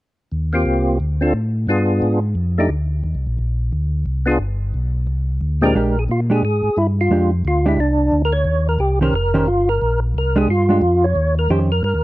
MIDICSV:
0, 0, Header, 1, 4, 480
1, 0, Start_track
1, 0, Tempo, 338219
1, 465, Time_signature, 4, 2, 24, 8
1, 17083, End_track
2, 0, Start_track
2, 0, Title_t, "Tonewheel organ"
2, 0, Program_c, 0, 16
2, 749, Note_on_c, 0, 58, 46
2, 759, Note_on_c, 0, 60, 42
2, 772, Note_on_c, 0, 65, 41
2, 783, Note_on_c, 0, 67, 48
2, 1384, Note_off_c, 0, 58, 0
2, 1390, Note_off_c, 0, 60, 0
2, 1396, Note_off_c, 0, 65, 0
2, 1401, Note_off_c, 0, 67, 0
2, 1715, Note_on_c, 0, 60, 49
2, 1727, Note_on_c, 0, 62, 45
2, 1734, Note_on_c, 0, 65, 45
2, 1737, Note_on_c, 0, 69, 52
2, 1886, Note_off_c, 0, 60, 0
2, 1891, Note_off_c, 0, 62, 0
2, 1895, Note_off_c, 0, 65, 0
2, 1896, Note_off_c, 0, 69, 0
2, 2393, Note_on_c, 0, 59, 48
2, 2402, Note_on_c, 0, 62, 47
2, 2405, Note_on_c, 0, 65, 43
2, 2414, Note_on_c, 0, 68, 50
2, 3115, Note_off_c, 0, 59, 0
2, 3120, Note_off_c, 0, 62, 0
2, 3121, Note_off_c, 0, 65, 0
2, 3126, Note_off_c, 0, 68, 0
2, 3663, Note_on_c, 0, 57, 49
2, 3671, Note_on_c, 0, 62, 42
2, 3686, Note_on_c, 0, 63, 44
2, 3690, Note_on_c, 0, 67, 57
2, 3823, Note_off_c, 0, 57, 0
2, 3827, Note_off_c, 0, 62, 0
2, 3834, Note_off_c, 0, 63, 0
2, 3836, Note_off_c, 0, 67, 0
2, 6042, Note_on_c, 0, 59, 50
2, 6054, Note_on_c, 0, 62, 45
2, 6065, Note_on_c, 0, 65, 46
2, 6067, Note_on_c, 0, 68, 53
2, 6216, Note_off_c, 0, 59, 0
2, 6222, Note_off_c, 0, 62, 0
2, 6227, Note_off_c, 0, 65, 0
2, 6228, Note_off_c, 0, 68, 0
2, 7967, Note_on_c, 0, 46, 51
2, 7978, Note_on_c, 0, 56, 51
2, 7979, Note_on_c, 0, 60, 46
2, 7990, Note_on_c, 0, 62, 46
2, 7995, Note_on_c, 0, 67, 62
2, 8023, Note_on_c, 0, 70, 78
2, 8139, Note_off_c, 0, 46, 0
2, 8144, Note_off_c, 0, 56, 0
2, 8145, Note_off_c, 0, 60, 0
2, 8150, Note_off_c, 0, 62, 0
2, 8153, Note_off_c, 0, 67, 0
2, 8498, Note_off_c, 0, 70, 0
2, 8502, Note_on_c, 0, 68, 74
2, 8575, Note_off_c, 0, 68, 0
2, 8676, Note_on_c, 0, 65, 74
2, 8804, Note_off_c, 0, 65, 0
2, 8973, Note_on_c, 0, 68, 76
2, 9128, Note_off_c, 0, 68, 0
2, 9150, Note_on_c, 0, 68, 80
2, 9617, Note_on_c, 0, 64, 75
2, 9631, Note_off_c, 0, 68, 0
2, 9749, Note_off_c, 0, 64, 0
2, 9947, Note_on_c, 0, 65, 79
2, 10373, Note_off_c, 0, 65, 0
2, 10608, Note_on_c, 0, 65, 76
2, 10866, Note_off_c, 0, 65, 0
2, 10905, Note_on_c, 0, 64, 69
2, 11069, Note_off_c, 0, 64, 0
2, 11074, Note_on_c, 0, 62, 85
2, 11667, Note_off_c, 0, 62, 0
2, 11709, Note_on_c, 0, 70, 67
2, 11815, Note_on_c, 0, 73, 93
2, 11827, Note_off_c, 0, 70, 0
2, 12311, Note_off_c, 0, 73, 0
2, 12328, Note_on_c, 0, 70, 76
2, 12487, Note_on_c, 0, 67, 79
2, 12499, Note_off_c, 0, 70, 0
2, 12761, Note_off_c, 0, 67, 0
2, 12811, Note_on_c, 0, 70, 79
2, 12975, Note_off_c, 0, 70, 0
2, 12992, Note_on_c, 0, 70, 92
2, 13450, Note_on_c, 0, 65, 68
2, 13468, Note_off_c, 0, 70, 0
2, 13751, Note_off_c, 0, 65, 0
2, 13754, Note_on_c, 0, 70, 100
2, 14191, Note_off_c, 0, 70, 0
2, 14450, Note_on_c, 0, 70, 80
2, 14729, Note_off_c, 0, 70, 0
2, 14732, Note_on_c, 0, 68, 79
2, 14881, Note_off_c, 0, 68, 0
2, 14908, Note_on_c, 0, 65, 88
2, 15671, Note_on_c, 0, 73, 107
2, 15691, Note_off_c, 0, 65, 0
2, 16106, Note_off_c, 0, 73, 0
2, 16161, Note_on_c, 0, 70, 86
2, 16326, Note_on_c, 0, 67, 78
2, 16330, Note_off_c, 0, 70, 0
2, 16456, Note_off_c, 0, 67, 0
2, 16631, Note_on_c, 0, 70, 79
2, 16788, Note_off_c, 0, 70, 0
2, 16806, Note_on_c, 0, 70, 91
2, 17083, Note_off_c, 0, 70, 0
2, 17083, End_track
3, 0, Start_track
3, 0, Title_t, "Hollow-body jazz guitar"
3, 0, Program_c, 1, 26
3, 8164, Note_on_c, 1, 56, 57
3, 8170, Note_on_c, 1, 62, 52
3, 8184, Note_on_c, 1, 67, 64
3, 8435, Note_off_c, 1, 56, 0
3, 8438, Note_off_c, 1, 62, 0
3, 8445, Note_off_c, 1, 67, 0
3, 8939, Note_on_c, 1, 56, 50
3, 8954, Note_on_c, 1, 67, 65
3, 8956, Note_on_c, 1, 62, 57
3, 9104, Note_off_c, 1, 56, 0
3, 9112, Note_off_c, 1, 67, 0
3, 9113, Note_off_c, 1, 62, 0
3, 10089, Note_on_c, 1, 56, 45
3, 10098, Note_on_c, 1, 62, 49
3, 10112, Note_on_c, 1, 67, 51
3, 10356, Note_off_c, 1, 56, 0
3, 10360, Note_off_c, 1, 62, 0
3, 10367, Note_off_c, 1, 67, 0
3, 10867, Note_on_c, 1, 56, 49
3, 10870, Note_on_c, 1, 62, 57
3, 10875, Note_on_c, 1, 67, 53
3, 11027, Note_off_c, 1, 56, 0
3, 11029, Note_off_c, 1, 62, 0
3, 11031, Note_off_c, 1, 67, 0
3, 12787, Note_on_c, 1, 51, 50
3, 12802, Note_on_c, 1, 61, 57
3, 12802, Note_on_c, 1, 67, 57
3, 12808, Note_on_c, 1, 72, 60
3, 12945, Note_off_c, 1, 51, 0
3, 12952, Note_off_c, 1, 61, 0
3, 12952, Note_off_c, 1, 67, 0
3, 12955, Note_off_c, 1, 72, 0
3, 13254, Note_on_c, 1, 51, 57
3, 13259, Note_on_c, 1, 61, 65
3, 13267, Note_on_c, 1, 67, 64
3, 13267, Note_on_c, 1, 72, 62
3, 13418, Note_off_c, 1, 51, 0
3, 13420, Note_off_c, 1, 61, 0
3, 13424, Note_off_c, 1, 67, 0
3, 13424, Note_off_c, 1, 72, 0
3, 14700, Note_on_c, 1, 56, 70
3, 14705, Note_on_c, 1, 62, 65
3, 14718, Note_on_c, 1, 67, 59
3, 14859, Note_off_c, 1, 56, 0
3, 14861, Note_off_c, 1, 62, 0
3, 14868, Note_off_c, 1, 67, 0
3, 15170, Note_on_c, 1, 56, 49
3, 15185, Note_on_c, 1, 62, 58
3, 15188, Note_on_c, 1, 67, 50
3, 15333, Note_off_c, 1, 56, 0
3, 15341, Note_off_c, 1, 62, 0
3, 15342, Note_off_c, 1, 67, 0
3, 16325, Note_on_c, 1, 51, 47
3, 16331, Note_on_c, 1, 67, 49
3, 16340, Note_on_c, 1, 61, 44
3, 16340, Note_on_c, 1, 72, 53
3, 16586, Note_off_c, 1, 51, 0
3, 16589, Note_off_c, 1, 67, 0
3, 16593, Note_off_c, 1, 61, 0
3, 16593, Note_off_c, 1, 72, 0
3, 17083, End_track
4, 0, Start_track
4, 0, Title_t, "Tonewheel organ"
4, 0, Program_c, 2, 16
4, 448, Note_on_c, 2, 39, 54
4, 924, Note_off_c, 2, 39, 0
4, 931, Note_on_c, 2, 36, 71
4, 1406, Note_off_c, 2, 36, 0
4, 1418, Note_on_c, 2, 38, 67
4, 1891, Note_off_c, 2, 38, 0
4, 1895, Note_on_c, 2, 45, 64
4, 2370, Note_off_c, 2, 45, 0
4, 2376, Note_on_c, 2, 43, 69
4, 2852, Note_off_c, 2, 43, 0
4, 2869, Note_on_c, 2, 44, 74
4, 3337, Note_on_c, 2, 41, 67
4, 3339, Note_off_c, 2, 44, 0
4, 3814, Note_off_c, 2, 41, 0
4, 3823, Note_on_c, 2, 38, 67
4, 4297, Note_off_c, 2, 38, 0
4, 4310, Note_on_c, 2, 39, 61
4, 4469, Note_on_c, 2, 36, 44
4, 4470, Note_off_c, 2, 39, 0
4, 4635, Note_off_c, 2, 36, 0
4, 4639, Note_on_c, 2, 34, 51
4, 4787, Note_off_c, 2, 34, 0
4, 4804, Note_on_c, 2, 34, 72
4, 5269, Note_off_c, 2, 34, 0
4, 5288, Note_on_c, 2, 38, 76
4, 5752, Note_off_c, 2, 38, 0
4, 5759, Note_on_c, 2, 36, 69
4, 6228, Note_off_c, 2, 36, 0
4, 6233, Note_on_c, 2, 31, 65
4, 6705, Note_off_c, 2, 31, 0
4, 6729, Note_on_c, 2, 35, 71
4, 7193, Note_off_c, 2, 35, 0
4, 7196, Note_on_c, 2, 36, 69
4, 7667, Note_off_c, 2, 36, 0
4, 7676, Note_on_c, 2, 38, 67
4, 8147, Note_off_c, 2, 38, 0
4, 8159, Note_on_c, 2, 34, 68
4, 8628, Note_off_c, 2, 34, 0
4, 8642, Note_on_c, 2, 46, 75
4, 9110, Note_off_c, 2, 46, 0
4, 9122, Note_on_c, 2, 44, 83
4, 9397, Note_off_c, 2, 44, 0
4, 9414, Note_on_c, 2, 44, 36
4, 9507, Note_off_c, 2, 44, 0
4, 9602, Note_on_c, 2, 43, 76
4, 10069, Note_off_c, 2, 43, 0
4, 10082, Note_on_c, 2, 41, 74
4, 10548, Note_off_c, 2, 41, 0
4, 10570, Note_on_c, 2, 38, 85
4, 11032, Note_off_c, 2, 38, 0
4, 11038, Note_on_c, 2, 36, 83
4, 11505, Note_off_c, 2, 36, 0
4, 11522, Note_on_c, 2, 38, 70
4, 11985, Note_on_c, 2, 39, 75
4, 11987, Note_off_c, 2, 38, 0
4, 12457, Note_off_c, 2, 39, 0
4, 12472, Note_on_c, 2, 36, 81
4, 12940, Note_off_c, 2, 36, 0
4, 12958, Note_on_c, 2, 29, 86
4, 13422, Note_off_c, 2, 29, 0
4, 13431, Note_on_c, 2, 31, 73
4, 13898, Note_off_c, 2, 31, 0
4, 13931, Note_on_c, 2, 34, 72
4, 14388, Note_off_c, 2, 34, 0
4, 14398, Note_on_c, 2, 36, 78
4, 14861, Note_off_c, 2, 36, 0
4, 14879, Note_on_c, 2, 43, 82
4, 15340, Note_off_c, 2, 43, 0
4, 15351, Note_on_c, 2, 41, 78
4, 15816, Note_off_c, 2, 41, 0
4, 15831, Note_on_c, 2, 39, 74
4, 16295, Note_off_c, 2, 39, 0
4, 16307, Note_on_c, 2, 41, 83
4, 16773, Note_off_c, 2, 41, 0
4, 16786, Note_on_c, 2, 43, 75
4, 16942, Note_off_c, 2, 43, 0
4, 16952, Note_on_c, 2, 39, 51
4, 17083, Note_off_c, 2, 39, 0
4, 17083, End_track
0, 0, End_of_file